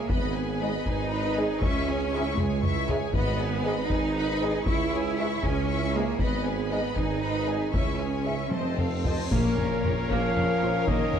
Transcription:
Already playing: viola section G#4, violin section C#5
0.09 double bass section G#1, tuba G#1, cello section B3, viola section B4, violin section D#5 B5, taiko
0.35 viola section G#4, violin section B4 G#5
0.61 trombone section G#2 G#3, french horn section G#4 D#5, viola section B4, violin section D#5 B5
0.86 double bass section G#1, tuba G#1, cello section D#4, viola section G#4, violin section B4 G#5, taiko
1.12 viola section B4, violin section D#5 B5
1.37 trombone section G#2 G#3, viola section G#4, french horn section G#4 D#5, violin section B4 G#5
1.62 tuba C#2, double bass section C#2, cello section C#4, viola section E4, violin section E5 C#6, taiko
1.86 viola section G#4, violin section C#5 G#5
2.12 trombone section G#2 G#3, viola section E4, french horn section G#4 E5, violin section C#6
2.16 violin section E5
2.37 tuba C#2, double bass section C#2, cello section G#3, viola section G#4, violin section C#5 G#5, taiko low-mid
2.62 viola section E4, violin section E5 C#6, taiko low-mid
2.88 trombone section G#2 G#3, viola section G#4, french horn section G#4 E5, violin section C#5 G#5, taiko low
3.13 tuba G#1, double bass section G#1, timpani G#2, cello section B3, viola section B4, violin section D#5 B5, taiko
3.40 viola section G#4, violin section B4 G#5
3.64 trombone section G#2 G#3, french horn section G#4 D#5, viola section B4, violin section D#5 B5
3.90 tuba G#1, double bass section G#1, cello section D#4, viola section G#4, violin section B4 G#5, taiko
4.16 viola section B4, violin section D#5 B5
4.41 trombone section G#2 G#3, french horn section G#4 D#5, viola section G#4, violin section B4 G#5
4.65 tuba C#2, double bass section C#2, viola section E4, cello section E4, violin section E5 C#6, taiko
4.92 viola section G#4, violin section C#5 G#5
5.17 trombone section G#2 G#3, viola section E4, french horn section G#4 E5, violin section E5 C#6
5.43 tuba C#2, double bass section C#2, cello section C#4, viola section G#4, violin section C#5 G#5, taiko
5.68 viola section E4, violin section E5 C#6
5.93 trombone section G#2 G#3, cello section A#3, viola section G#4, french horn section G#4 E5, violin section C#5 G#5
6.19 double bass section G#1, tuba G#1, cello section B3, viola section B4, violin section D#5 B5, taiko
6.45 viola section G#4, violin section B4 G#5
6.70 trombone section G#2 G#3, french horn section G#4 D#5, viola section B4, violin section D#5 B5
6.95 tuba G#1, double bass section G#1, cello section D#4, viola section G#4, violin section B4 G#5, taiko
7.21 viola section B4, violin section D#5 B5
7.46 trombone section G#2 G#3, french horn section G#4 D#5, viola section G#4, violin section B4 G#5
7.72 tuba C#2, double bass section C#2, cello section C#4, viola section E4, violin section E5 C#6, taiko, cymbal swell
7.99 viola section G#4, violin section C#5 G#5
8.24 trombone section G#2 G#3, viola section E4, french horn section G#4 E5, violin section E5 C#6
8.51 tuba F1, double bass section F2, cello section C4, viola section C5, violin section D#5 A5, taiko high
8.78 viola section A4, violin section C5 F5, taiko low-mid
9.05 trombone section C3 F3, french horn section A4 D#5, viola section C5, violin section D#5 A5, taiko low
9.30 tuba A#1, double bass section A#1, timpani A#2, cello section A#2, trombone section A#2, viola section A#3, pipe organ C#4 A#4 C#5 F5, french horn section C#4 A#4, trumpet A#4, violin section A#4 C#5, taiko, impact
9.58 tuba A#1, double bass section A#1, cello section A#2, viola section C#4, taiko low-mid
9.84 tuba A#1, double bass section A#1, cello section A#2, viola section F4, taiko low-mid
10.10 tuba A#1, double bass section A#1, cello section A#2, trombone section F3, viola section A#3, trumpet F5, taiko
10.36 tuba A#1, double bass section A#1, cello section A#2, viola section C#4, taiko low-mid
10.62 tuba A#1, double bass section A#1, cello section A#2, viola section F4
10.87 double bass section A#1, tuba A#1, cello section A#2, trombone section D#3, viola section A#3, trumpet D#5, taiko
11.13 tuba A#1, double bass section A#1, cello section A#2, viola section C#4, taiko low-mid

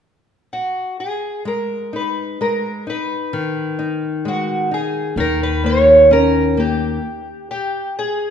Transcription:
0.53 twelve-string acoustic guitar F#4
1.00 twelve-string acoustic guitar G#4
1.45 nylon-string guitar G#3, twelve-string acoustic guitar A#4
1.93 nylon-string guitar D#4, twelve-string acoustic guitar B4
2.41 nylon-string guitar G#3, twelve-string acoustic guitar A#4
2.87 nylon-string guitar D#4, twelve-string acoustic guitar B4
3.33 nylon-string guitar D#3
3.79 nylon-string guitar D#4
4.25 nylon-string guitar G#3, twelve-string acoustic guitar F#4
4.71 nylon-string guitar D#4, twelve-string acoustic guitar G#4
5.16 upright bass D#2, nylon-string guitar D#3, twelve-string acoustic guitar A#4
5.43 twelve-string acoustic guitar B4
5.64 nylon-string guitar A#3, twelve-string acoustic guitar C#5
6.11 nylon-string guitar C#4, twelve-string acoustic guitar A#4
6.57 nylon-string guitar A#3, twelve-string acoustic guitar G4
7.51 twelve-string acoustic guitar G4
7.99 twelve-string acoustic guitar G#4

